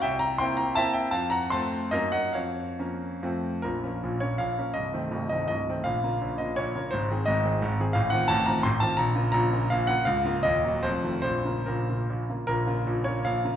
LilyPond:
<<
  \new Staff \with { instrumentName = "Grand piano" } { \time 3/4 \key bes \minor \tempo 4 = 162 <e'' g''>8 <g'' bes''>8 <g'' c'''>8 <g'' bes''>8 <e'' a''>8 <e'' g''>8 | <f'' a''>8 <ges'' bes''>8 <a'' c'''>4 <bes' ees''>8 <ees'' ges''>8 | <des'' f''>2 r4 | bes'4. des''8 f''4 |
ees''4. ees''8 ees''4 | f''4. ees''8 des''4 | c''4 ees''8 r4. | f''8 ges''8 a''8 bes''8 c'''8 a''8 |
bes''4 bes''4 f''8 ges''8 | f''4 ees''4 c''4 | c''4 bes'4. r8 | bes'4. des''8 f''4 | }
  \new Staff \with { instrumentName = "Grand piano" } { \clef bass \time 3/4 \key bes \minor c,4 <bes c' e'>4 <bes c' e'>4 | f,4 <a c' f'>4 <ges, bes ees'>4 | f,4 <f bes des'>4 <f, f a c'>4 | <bes,, bes,>8 <f bes des'>8 <bes,, bes,>8 <f bes des'>8 <bes,, bes,>8 <f bes des'>8 |
<c,, c,>8 <ees a c'>8 <c,, c,>8 <ees a c'>8 <c,, c,>8 <ees a c'>8 | <bes,, bes,>8 <des bes f'>8 <bes,, bes,>8 <des bes f'>8 <bes,, bes,>8 <des bes f'>8 | <aes,, aes,>8 <ees c' aes'>8 <aes,, aes,>8 <ees c' aes'>8 <aes,, aes,>8 <ees c' aes'>8 | <a,, a,>8 <ees c' f'>8 <a,, a,>8 <ees c' f'>8 <a,, a,>8 <ees c' f'>8 |
<bes,, bes,>8 <des bes f'>8 <bes,, bes,>8 <des bes f'>8 <bes,, bes,>8 <des bes f'>8 | <des,, des,>8 <des bes f'>8 <ees,, ees,>8 <ges bes ges'>8 <f,, f,>8 <ees a f'>8 | <bes,, bes,>8 <des bes f'>8 <bes,, bes,>8 <des bes f'>8 <bes,, bes,>8 <des bes f'>8 | <bes,, bes,>8 <des bes f'>8 <bes,, bes,>8 <des bes f'>8 <bes,, bes,>8 <des bes f'>8 | }
>>